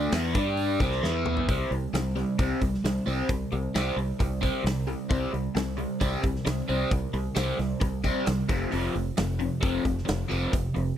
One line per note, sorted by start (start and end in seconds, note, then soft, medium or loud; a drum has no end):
0.00 0.12 D3 medium
0.00 0.12 A3 loud
0.00 0.13 D4 medium
0.12 0.34 E2 loud
0.12 0.35 E3 medium
0.12 0.34 B3 medium
0.12 0.35 E4 medium
0.12 snare loud
0.12 open hi-hat medium
0.34 0.77 G2 medium
0.34 0.80 G3 medium
0.34 0.80 D4 medium
0.34 0.80 G4 medium
0.34 kick loud
0.34 open hi-hat medium
0.57 open hi-hat medium
0.80 1.01 C2 medium
0.80 1.02 C3 medium
0.80 1.03 G3 medium
0.80 1.03 C4 medium
0.80 kick loud
0.80 open hi-hat soft
0.92 snare soft
1.02 1.45 E2 medium
1.02 1.47 E3 medium
1.02 1.48 B3 medium
1.02 1.48 E4 loud
1.02 snare medium
1.26 mid tom medium
1.37 floor tom medium
1.49 1.63 C2 medium
1.49 1.70 C3 medium
1.49 1.70 G3 medium
1.49 1.70 C4 medium
1.49 kick loud
1.49 open hi-hat medium
1.71 1.86 C2 medium
1.71 1.92 C3 medium
1.71 1.92 G3 medium
1.71 open hi-hat medium
1.93 2.23 C2 medium
1.93 2.14 C3 medium
1.93 2.14 G3 medium
1.93 snare loud
1.93 open hi-hat medium
2.16 2.36 C3 medium
2.16 2.36 G3 medium
2.16 snare soft
2.16 open hi-hat medium
2.39 2.54 C2 medium
2.39 2.60 C3 medium
2.39 2.60 G3 medium
2.39 2.60 C4 medium
2.39 kick loud
2.39 open hi-hat medium
2.61 2.76 C2 medium
2.61 2.81 C3 medium
2.61 2.82 G3 medium
2.61 kick medium
2.61 open hi-hat medium
2.74 snare soft
2.84 2.98 C2 medium
2.84 3.04 C3 medium
2.84 3.04 G3 medium
2.84 snare loud
2.84 open hi-hat medium
3.06 3.22 C2 medium
3.06 3.28 C3 medium
3.06 3.28 G3 medium
3.06 3.28 C4 medium
3.06 open hi-hat medium
3.29 3.44 C2 medium
3.29 3.50 C3 medium
3.29 3.50 G3 medium
3.29 kick loud
3.29 open hi-hat medium
3.52 3.67 C2 medium
3.52 3.72 C3 medium
3.52 3.72 G3 medium
3.52 open hi-hat medium
3.74 3.89 C2 medium
3.74 3.96 C3 medium
3.74 3.96 G3 medium
3.74 3.96 C4 medium
3.74 snare loud
3.74 open hi-hat medium
3.96 4.11 C2 medium
3.96 4.17 C3 medium
3.96 4.17 G3 medium
3.96 open hi-hat medium
4.19 4.49 C2 medium
4.19 4.40 C3 medium
4.19 4.40 G3 medium
4.19 kick medium
4.19 open hi-hat medium
4.41 4.62 C3 medium
4.41 4.63 G3 medium
4.41 4.63 C4 loud
4.41 kick medium
4.41 open hi-hat medium
4.63 4.94 C2 medium
4.63 4.84 C3 medium
4.63 4.85 G3 medium
4.63 snare loud
4.63 open hi-hat medium
4.87 5.08 C3 medium
4.87 5.08 G3 medium
4.87 open hi-hat medium
5.10 5.25 C2 loud
5.10 5.31 C3 medium
5.10 5.31 G3 medium
5.10 5.31 C4 medium
5.10 kick loud
5.10 open hi-hat medium
5.33 5.48 C2 medium
5.33 5.53 C3 medium
5.33 5.53 G3 medium
5.33 open hi-hat medium
5.55 5.84 C2 medium
5.55 5.75 C3 medium
5.55 5.75 G3 medium
5.55 snare loud
5.55 open hi-hat medium
5.77 5.98 C3 medium
5.77 5.98 G3 medium
5.77 open hi-hat medium
6.00 6.16 C2 medium
6.00 6.21 C3 medium
6.00 6.22 G3 medium
6.00 6.22 C4 loud
6.00 kick loud
6.00 open hi-hat medium
6.23 6.38 C2 medium
6.23 6.43 C3 medium
6.23 6.43 G3 medium
6.23 kick medium
6.23 open hi-hat soft
6.36 snare soft
6.45 6.61 C2 medium
6.45 6.66 C3 medium
6.45 6.66 G3 medium
6.45 snare loud
6.45 open hi-hat medium
6.69 6.83 C2 medium
6.69 6.90 C3 medium
6.69 6.90 G3 medium
6.69 6.90 C4 medium
6.69 open hi-hat soft
6.91 7.06 C2 medium
6.91 7.11 C3 medium
6.91 7.11 G3 medium
6.91 kick loud
6.91 open hi-hat medium
7.13 7.28 C2 medium
7.13 7.34 C3 medium
7.13 7.34 G3 medium
7.13 open hi-hat medium
7.35 7.51 C2 medium
7.35 7.57 C3 medium
7.35 7.57 G3 medium
7.35 7.57 C4 medium
7.35 snare loud
7.35 open hi-hat medium
7.58 7.73 C2 medium
7.58 7.79 C3 medium
7.58 7.79 G3 medium
7.58 snare soft
7.58 open hi-hat soft
7.80 8.11 C2 medium
7.80 8.01 C3 medium
7.80 8.01 G3 medium
7.80 kick loud
7.80 open hi-hat medium
8.04 8.25 C3 medium
8.04 8.25 G3 medium
8.04 8.25 C4 medium
8.04 kick medium
8.04 open hi-hat soft
8.26 8.42 C2 medium
8.26 8.47 C3 medium
8.26 8.47 G3 medium
8.26 snare loud
8.26 open hi-hat medium
8.49 8.64 F1 medium
8.49 8.70 F2 medium
8.49 8.70 C3 medium
8.49 8.70 F3 medium
8.49 kick loud
8.49 open hi-hat medium
8.71 8.87 F1 medium
8.71 8.93 F2 medium
8.71 8.93 C3 medium
8.71 8.93 F3 loud
8.71 open hi-hat medium
8.95 9.10 F1 medium
8.95 9.15 F2 medium
8.95 9.15 C3 medium
8.95 open hi-hat medium
9.17 9.47 F1 medium
9.17 9.37 F2 medium
9.17 9.38 C3 medium
9.17 snare loud
9.17 open hi-hat medium
9.39 9.60 F2 medium
9.39 9.60 C3 medium
9.39 open hi-hat medium
9.61 9.78 F1 medium
9.61 9.82 F2 medium
9.61 9.82 C3 medium
9.61 9.83 F3 loud
9.61 kick loud
9.61 open hi-hat medium
9.84 10.00 F1 medium
9.84 10.04 F2 medium
9.84 10.04 C3 medium
9.84 kick medium
9.84 open hi-hat medium
9.98 snare soft
10.05 10.23 F1 medium
10.05 10.27 F2 medium
10.05 10.27 C3 medium
10.05 snare loud
10.05 open hi-hat medium
10.28 10.46 F1 medium
10.28 10.50 F2 medium
10.28 10.51 C3 medium
10.28 10.51 F3 loud
10.28 open hi-hat medium
10.52 10.68 F1 medium
10.52 10.72 F2 medium
10.52 10.73 C3 medium
10.52 kick loud
10.52 open hi-hat medium
10.75 10.91 F1 medium
10.75 10.95 F2 medium
10.75 10.95 C3 medium
10.75 open hi-hat medium